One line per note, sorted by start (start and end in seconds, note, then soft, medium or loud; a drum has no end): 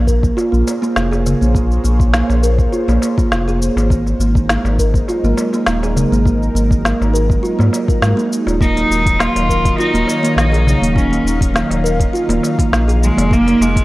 0.00 0.31 A#1 medium
0.00 5.21 A#3 medium
0.00 3.91 F4 medium
0.00 5.13 G#4 medium
0.00 8.61 C5 medium
0.07 0.23 A#4 medium
0.07 kick medium
0.07 shaker medium
0.23 kick loud
0.23 shaker soft
0.37 0.51 F4 medium
0.37 darbuka ka medium
0.37 shaker soft
0.44 3.90 C#5 medium
0.52 0.63 A#1 loud
0.52 0.66 A#3 medium
0.52 shaker soft
0.67 darbuka tek medium
0.67 shaker medium
0.82 1.10 A#3 medium
0.82 darbuka tek soft
0.82 shaker soft
0.96 1.34 F1 medium
0.96 snare loud
0.96 shaker soft
1.11 1.25 G#4 medium
1.11 darbuka ka medium
1.11 shaker soft
1.26 darbuka ka soft
1.26 darbuka tek soft
1.26 darbuka dum medium
1.26 shaker medium
1.41 1.78 A#1 medium
1.41 1.53 A#3 medium
1.41 shaker soft
1.54 1.83 A#3 medium
1.54 kick loud
1.54 shaker soft
1.71 shaker soft
1.84 2.22 A#1 loud
1.84 2.12 A#3 medium
1.84 shaker medium
2.00 kick loud
2.00 shaker soft
2.13 2.42 A#3 medium
2.13 snare loud
2.13 shaker soft
2.29 2.66 A#1 medium
2.29 darbuka tek medium
2.29 shaker soft
2.43 2.58 A#4 medium
2.43 shaker medium
2.59 kick loud
2.59 shaker soft
2.73 2.87 F4 medium
2.73 shaker soft
2.88 2.98 A#1 loud
2.88 3.01 A#3 medium
2.88 darbuka tek medium
2.88 shaker soft
3.02 darbuka tek medium
3.02 shaker medium
3.17 3.46 A#3 loud
3.17 kick loud
3.17 shaker soft
3.31 3.69 F1 medium
3.31 snare loud
3.31 shaker soft
3.47 3.60 G#4 medium
3.47 shaker soft
3.62 shaker medium
3.76 4.13 G#1 medium
3.76 3.90 A#3 medium
3.76 darbuka ka medium
3.76 darbuka tek medium
3.76 shaker soft
3.90 8.61 G#3 medium
3.90 4.19 A#3 medium
3.90 kick loud
3.90 shaker soft
3.95 13.85 D#4 medium
4.07 darbuka tek soft
4.07 shaker soft
4.11 10.35 A#4 medium
4.19 4.58 G#1 loud
4.19 4.48 A#3 medium
4.19 shaker medium
4.35 kick loud
4.35 shaker soft
4.44 13.32 F#3 medium
4.50 4.78 A#3 medium
4.50 snare loud
4.50 shaker soft
4.64 5.02 G#1 medium
4.64 darbuka tek medium
4.64 shaker soft
4.78 4.94 A#4 medium
4.78 kick medium
4.78 shaker medium
4.94 kick loud
4.94 shaker soft
5.08 5.23 F4 medium
5.08 darbuka ka medium
5.08 shaker soft
5.24 5.34 G#1 loud
5.24 5.37 A#3 medium
5.24 shaker soft
5.38 darbuka tek medium
5.38 shaker medium
5.53 5.81 A#3 loud
5.53 darbuka tek soft
5.53 shaker soft
5.67 6.05 D#1 medium
5.67 snare medium
5.67 shaker soft
5.83 5.96 G#4 medium
5.83 darbuka ka medium
5.83 shaker soft
5.96 darbuka ka soft
5.96 darbuka tek soft
5.96 darbuka dum medium
5.96 shaker medium
6.12 6.49 G#1 medium
6.12 6.25 A#3 medium
6.12 shaker soft
6.26 6.54 A#3 medium
6.26 kick loud
6.26 shaker soft
6.43 shaker soft
6.54 6.93 G#1 loud
6.54 6.83 A#3 medium
6.54 shaker medium
6.71 kick loud
6.71 shaker soft
6.85 7.13 A#3 medium
6.85 snare medium
6.85 shaker soft
7.01 7.37 G#1 medium
7.01 darbuka tek medium
7.01 shaker soft
7.13 7.29 A#4 medium
7.13 shaker medium
7.29 kick loud
7.29 shaker soft
7.43 7.57 F4 medium
7.43 shaker soft
7.59 7.69 G#2 loud
7.59 7.72 A#3 medium
7.59 darbuka tek medium
7.59 shaker soft
7.73 darbuka tek medium
7.73 shaker medium
7.88 8.01 A#4 medium
7.88 kick loud
7.88 shaker soft
8.02 8.13 G#2 medium
8.02 8.16 G#3 medium
8.02 snare loud
8.02 shaker soft
8.17 8.30 A#3 loud
8.17 shaker soft
8.33 shaker medium
8.47 8.84 D#1 medium
8.47 8.55 F4 medium
8.47 darbuka ka medium
8.47 darbuka tek medium
8.47 shaker soft
8.61 13.33 D#3 medium
8.61 8.75 A#3 medium
8.61 9.20 D#4 loud
8.61 kick loud
8.61 shaker soft
8.77 9.18 A#3 medium
8.77 open hi-hat soft
8.77 darbuka tek soft
8.77 shaker soft
8.90 9.28 D#1 medium
8.90 shaker medium
9.06 kick loud
9.06 open hi-hat medium
9.06 shaker soft
9.15 13.32 C#5 medium
9.19 9.48 A#3 medium
9.19 9.78 F4 loud
9.19 snare medium
9.19 shaker soft
9.36 9.73 D#1 medium
9.36 13.85 F5 medium
9.36 open hi-hat soft
9.36 darbuka tek medium
9.36 shaker soft
9.49 9.64 A#4 medium
9.49 kick medium
9.49 shaker medium
9.65 kick loud
9.65 open hi-hat soft
9.65 shaker soft
9.78 10.33 D#4 loud
9.78 9.93 F4 medium
9.78 darbuka ka medium
9.78 shaker soft
9.94 10.04 D#1 loud
9.94 10.07 A#3 medium
9.94 open hi-hat soft
9.94 shaker soft
10.08 darbuka tek medium
10.08 shaker medium
10.23 10.51 A#3 medium
10.23 open hi-hat soft
10.23 darbuka tek soft
10.23 shaker soft
10.36 10.75 A#1 medium
10.36 10.92 D#4 medium
10.36 snare medium
10.36 shaker soft
10.53 10.66 G#4 medium
10.53 open hi-hat soft
10.53 darbuka ka medium
10.53 shaker soft
10.67 darbuka ka soft
10.67 darbuka tek soft
10.67 darbuka dum medium
10.67 shaker medium
10.82 11.19 D#1 medium
10.82 10.95 A#3 medium
10.82 open hi-hat soft
10.82 shaker soft
10.96 11.10 A#3 medium
10.96 11.51 C#4 medium
10.96 kick loud
10.96 shaker soft
11.11 11.53 A#3 medium
11.11 open hi-hat soft
11.11 shaker soft
11.25 11.63 D#1 loud
11.25 shaker medium
11.41 kick loud
11.41 open hi-hat medium
11.41 shaker soft
11.54 11.83 A#3 medium
11.54 snare medium
11.54 shaker soft
11.70 12.08 D#1 medium
11.70 open hi-hat soft
11.70 darbuka tek medium
11.70 shaker soft
11.84 11.99 A#4 medium
11.84 shaker medium
12.00 kick loud
12.00 open hi-hat soft
12.00 shaker soft
12.14 12.28 F4 medium
12.14 shaker soft
12.29 12.39 D#1 loud
12.29 12.43 A#3 medium
12.29 open hi-hat soft
12.29 darbuka tek medium
12.29 shaker soft
12.43 darbuka tek medium
12.43 shaker medium
12.59 12.87 A#3 loud
12.59 kick loud
12.59 open hi-hat medium
12.59 shaker soft
12.72 13.10 A#1 medium
12.72 snare medium
12.72 shaker soft
12.88 13.01 G#4 medium
12.88 open hi-hat soft
12.88 shaker soft
13.03 13.34 G#3 loud
13.03 shaker medium
13.17 13.55 F1 medium
13.17 13.30 A#3 medium
13.17 open hi-hat medium
13.17 darbuka ka medium
13.17 darbuka tek medium
13.17 shaker soft
13.31 13.85 F3 medium
13.31 13.45 A#3 medium
13.31 13.63 A#3 loud
13.31 kick loud
13.31 shaker soft
13.47 13.85 A#3 medium
13.47 open hi-hat soft
13.47 darbuka tek soft
13.47 shaker soft
13.60 13.85 F1 medium
13.60 13.85 G#3 loud
13.60 shaker medium
13.76 kick medium
13.76 open hi-hat medium
13.76 shaker soft